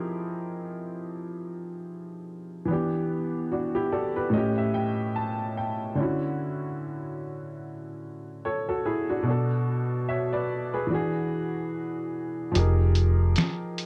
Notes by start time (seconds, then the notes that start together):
Already playing: F3 C4 D#4 E4 G4 G#4 A#4
2.65 E3 B3
2.70 D4 G4
3.52 D4 F#4
3.75 E4 G4
3.92 F#4 A4 D5
4.16 G4 B4
4.30 A2 A3 D#5
4.35 C#4 G4
4.58 E5
4.74 G5
5.16 A5
5.57 G5
5.95 D3 C#4
6.00 E4 F#4
8.45 A4 C#5
8.69 F#4 A4
8.86 E4 G#4
9.10 D4 F#4
9.23 B2 B3
9.28 D4 A4
10.09 C#5 E5
10.33 B4 D5
10.74 G#4 B4
10.87 E3 D4
10.92 F#4 G#4
12.52 F1 F3 D#4 G4, closed hi-hat
12.57 G#4 A#4
12.95 closed hi-hat
13.36 finger snap, snare, closed hi-hat
13.78 closed hi-hat